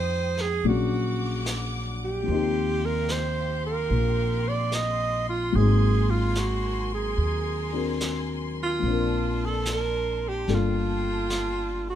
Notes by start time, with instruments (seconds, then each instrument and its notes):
Already playing: upright bass F2, upright piano F3 G#3 C4 D#4 G4, alto saxophone C5, string section G5 D#6
0.37 alto saxophone G#4, snare
0.63 upright bass A#1, upright piano F#3 A#3 C#4 D4 G#4, string section F#5 D6, brush sweep
0.69 alto saxophone F#4
1.46 snare, hi-hat pedal
2.04 alto saxophone G4
2.23 upright piano F3 A#3
2.27 upright bass D#2, upright piano C4, string section G4 F5 C6, brush sweep
2.31 upright piano D#4 G4
2.85 alto saxophone A#4
3.08 alto saxophone C5, snare, hi-hat pedal
3.66 alto saxophone A#4
3.90 upright bass A#1, upright piano A#3 F4, brush sweep
4.48 alto saxophone D5
4.72 alto saxophone D#5, snare, hi-hat pedal
5.29 alto saxophone F4
5.52 upright bass G#1, upright piano F#3 A#3 C4, alto saxophone G#4, string section A#4 G#5, brush sweep
5.57 upright piano D#4 G#4
6.11 alto saxophone F4
6.35 alto saxophone F#4, snare, hi-hat pedal
6.95 alto saxophone G#4
7.17 upright bass D#2, brush sweep
7.72 upright piano C4 D4 F#4 A#4
8.00 snare, hi-hat pedal
8.63 alto saxophone F4
8.80 upright bass A#1, upright piano F3 A#3, string section A5, brush sweep
8.84 upright piano C4 D4, string section D5
8.91 upright piano A#4
9.46 alto saxophone A4
9.65 snare, hi-hat pedal
9.73 alto saxophone A#4
10.28 alto saxophone G4
10.48 upright bass G1, upright piano G3 A#3 D4 F4 A4, string section F5 G5 A5, brush sweep, snare
10.55 alto saxophone F4
11.30 snare, hi-hat pedal
11.90 alto saxophone F#4